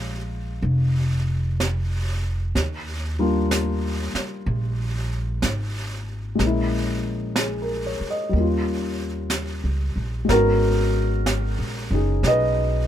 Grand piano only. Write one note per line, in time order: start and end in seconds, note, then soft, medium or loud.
0.00 2.56 G#3 soft
0.00 2.56 B3 soft
0.00 2.57 D4 soft
0.00 2.58 F4 soft
0.00 2.21 D5 medium
0.00 2.20 F5 medium
3.19 6.40 G3 soft
3.19 6.37 A#3 soft
3.19 6.40 D4 soft
3.19 6.40 F4 medium
6.35 8.31 G#3 soft
6.35 8.32 A#3 soft
6.42 8.34 C#4 soft
6.46 8.36 E4 soft
7.38 7.82 G#4 soft
7.62 8.02 A#4 soft
7.86 8.16 C#5 soft
8.10 8.44 D#5 soft
8.29 10.27 G3 soft
8.29 10.29 A#3 soft
8.37 10.30 C#4 soft
8.37 10.33 F4 soft
10.25 12.87 G#3 soft
10.25 12.87 B3 soft
10.30 11.90 C#4 soft
10.30 10.34 F#4 medium
10.30 11.88 A#4 medium
10.36 12.87 F#4 soft
11.92 12.87 C#4 soft
11.92 12.87 D#4 soft
11.92 12.87 G#4 soft
12.27 12.87 B4 medium
12.27 12.87 D#5 medium